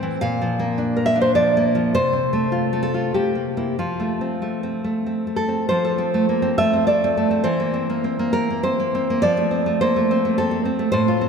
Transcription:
Already playing: A2 C4 E4 C5 G5
0.03 E3
0.21 A#2 F5
0.42 F3
0.59 A#3
0.78 D4
0.97 A#4
1.06 E5
1.16 D4
1.21 C5
1.35 F3 D5
1.57 A#3
1.75 F3
1.94 C3 C5
2.13 C4
2.33 A3
2.52 F4
2.73 A3
2.83 A4
2.94 F4
3.14 C3 G4
3.35 A#3
3.57 A#3 E4
3.79 F3 F4
4.00 A3
4.21 C4
4.42 A3
4.63 C4
4.84 A3
5.06 C4
5.27 A3
5.36 A4
5.48 C4
5.69 F3 C5
5.85 A4
5.98 C4
6.14 A3
6.29 A#3
6.42 C4
6.58 A3 E5
6.73 C4
6.87 A4 D5
7.04 C4
7.17 A3
7.31 C4
7.44 E3 C5
7.60 A#3
7.74 C4
7.90 A#3
8.04 C4
8.19 A#3
8.33 C4 A#4
8.50 A#3
8.63 C4 C5
8.80 A#3
8.95 C4
9.10 A#3
9.22 F3 D5
9.37 A3
9.51 C4
9.66 A3
9.81 A#3 C5
9.96 A3
10.11 C4
10.25 A3
10.38 C4 A4
10.51 A3
10.65 C4
10.79 A3
10.92 A2 C5
11.08 F4
11.21 C4

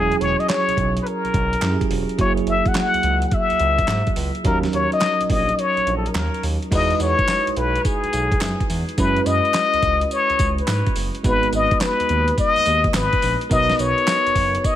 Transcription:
Already playing: E1 F#3 C#4 E4 G#4
0.12 closed hi-hat
0.21 E1 C#5, closed hi-hat
0.40 D#5, closed hi-hat
0.49 C#5, snare, clap, closed hi-hat
0.68 B1, closed hi-hat
0.77 B1, kick, closed hi-hat
0.97 closed hi-hat
1.03 A#4 B4
1.07 closed hi-hat
1.25 B1, closed hi-hat
1.34 B1, kick, closed hi-hat
1.53 closed hi-hat
1.62 F#2 F#3 C#4 E4 G4, snare, clap, closed hi-hat
1.70 G#4
1.81 kick, closed hi-hat
1.90 E1, open hi-hat
2.09 closed hi-hat
2.17 F#1 F#3 A#3 E4 F#4 C#5, kick, closed hi-hat
2.26 G#4
2.37 closed hi-hat
2.47 F#1 E5, closed hi-hat
2.66 F#5, kick, closed hi-hat
2.75 F#5, snare, clap, closed hi-hat
2.94 C#2, closed hi-hat
3.03 C#2, closed hi-hat
3.22 closed hi-hat
3.29 F#5, kick, closed hi-hat
3.34 E5
3.50 C#2, closed hi-hat
3.60 C#2, closed hi-hat
3.78 kick, closed hi-hat
3.88 G#2, snare, clap, closed hi-hat
4.07 kick, closed hi-hat
4.16 C#2, open hi-hat
4.35 closed hi-hat
4.44 D#2 F#3 C#4 D#4 A#4, kick, closed hi-hat
4.63 snare, closed hi-hat
4.73 D#2 C#5, closed hi-hat
4.92 D#5, closed hi-hat
5.01 snare, clap, closed hi-hat
5.20 A#1, closed hi-hat
5.30 A#1 D#5, kick, open hi-hat
5.49 closed hi-hat
5.59 C#5, closed hi-hat
5.77 A#1, closed hi-hat
5.86 A#1, closed hi-hat
5.97 A4
6.06 A#4, closed hi-hat
6.15 D#2, snare, clap, closed hi-hat
6.34 closed hi-hat
6.43 D#2, open hi-hat
6.63 closed hi-hat
6.71 E2 G#3 D#4 E4 F#4 B4 D#5, kick, closed hi-hat, crash, tambourine
6.91 closed hi-hat
7.00 E2 C#5, closed hi-hat, tambourine
7.19 kick, closed hi-hat
7.28 snare, clap, closed hi-hat, tambourine
7.47 B1, closed hi-hat
7.57 B1 B4, closed hi-hat
7.76 closed hi-hat
7.85 G#4, kick, closed hi-hat, tambourine
8.03 B1, closed hi-hat
8.13 B1, closed hi-hat, tambourine
8.32 kick, closed hi-hat
8.41 F#2, snare, clap, closed hi-hat, tambourine
8.60 kick, closed hi-hat
8.70 E2, open hi-hat, tambourine
8.89 closed hi-hat
8.97 F#2 G#3 C#4 E4 F#4 B4, kick, closed hi-hat, tambourine
9.16 closed hi-hat
9.26 F#2 D#5, closed hi-hat, tambourine
9.45 closed hi-hat
9.54 snare, clap, closed hi-hat, tambourine
9.74 C#2, closed hi-hat
9.83 C#2, kick, closed hi-hat
10.01 closed hi-hat
10.11 C#5, closed hi-hat, tambourine
10.30 C#2, closed hi-hat
10.39 C#2, kick, closed hi-hat, tambourine
10.58 B4, closed hi-hat
10.68 G#2, snare, clap, closed hi-hat, tambourine
10.87 kick, closed hi-hat
10.96 F#1, open hi-hat, tambourine
11.15 closed hi-hat
11.23 G#1 G#3 B3 D#4 F#4 B4, kick, closed hi-hat, tambourine
11.28 B4
11.43 closed hi-hat
11.53 G#1 D#5, closed hi-hat, tambourine
11.71 kick, closed hi-hat
11.81 B4, snare, clap, closed hi-hat, tambourine
12.00 D#2, closed hi-hat
12.09 D#2, closed hi-hat
12.28 closed hi-hat
12.38 D#5, kick, closed hi-hat, tambourine
12.56 D#2, closed hi-hat
12.66 D#2, closed hi-hat, tambourine
12.84 kick, closed hi-hat
12.94 G#1 B4, snare, clap, closed hi-hat, tambourine
13.13 kick, closed hi-hat
13.22 A#1, open hi-hat, tambourine
13.41 closed hi-hat
13.50 B1 B3 D#4 F#4 A#4 B4 D#5, kick, closed hi-hat, tambourine
13.70 snare, closed hi-hat
13.79 B1 C#5, closed hi-hat, tambourine
13.98 closed hi-hat
14.07 snare, clap, closed hi-hat, tambourine
14.27 F#1, closed hi-hat
14.35 F#1, kick, open hi-hat
14.55 closed hi-hat
14.64 D#5, kick, closed hi-hat, tambourine

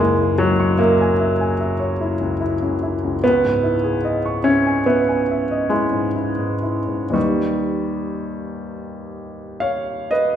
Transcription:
Already playing: F#1 C#2 A#3
0.00 G#3 E4
0.20 G#4
0.38 F#3 C#5
0.60 C#6
0.79 A#3 E5
1.01 G#5
1.20 E5
1.41 G#5
1.60 E5
1.79 C#5
2.01 E4
2.21 C#2
2.40 E4
2.62 C#2
2.83 E4
3.04 C#2
3.24 C#2 B3
3.45 G#2
3.63 E4
3.84 G#4
4.05 D#5
4.26 C#6
4.44 C#4 E5
4.67 G#5
4.86 B3 E5
5.09 G#5
5.31 E5
5.51 D#5
5.69 G#3 E4
5.92 G#2
6.16 E4
6.39 G#2
6.62 E4
6.88 G#2
7.10 D#2 G3 D#4 B4 D#5 C#6
9.60 C#5 F5
10.11 B4 D#5

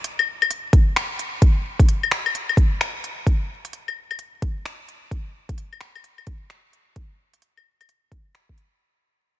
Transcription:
0.04 closed hi-hat
0.19 claves
0.42 claves
0.51 closed hi-hat
0.73 kick, closed hi-hat
0.96 finger snap, closed hi-hat
1.19 closed hi-hat
1.42 kick, closed hi-hat
1.79 kick, closed hi-hat
1.89 closed hi-hat
2.03 claves
2.11 finger snap
2.26 claves
2.35 closed hi-hat
2.49 claves
2.57 kick, closed hi-hat
2.81 finger snap, closed hi-hat
3.04 closed hi-hat
3.27 kick, closed hi-hat
3.65 closed hi-hat
3.73 closed hi-hat
3.88 claves
4.11 claves
4.19 closed hi-hat
4.42 kick, closed hi-hat
4.65 finger snap, closed hi-hat
4.89 closed hi-hat
5.11 kick, closed hi-hat
5.49 kick, closed hi-hat
5.58 closed hi-hat
5.73 claves
5.81 finger snap
5.95 claves
6.04 closed hi-hat
6.18 claves
6.27 kick, closed hi-hat
6.50 finger snap, closed hi-hat
6.73 closed hi-hat
6.96 kick, closed hi-hat
7.34 closed hi-hat
7.42 closed hi-hat
7.57 claves
7.81 closed hi-hat, claves
7.89 closed hi-hat
8.12 kick, closed hi-hat
8.35 finger snap, closed hi-hat
8.49 kick
8.58 closed hi-hat

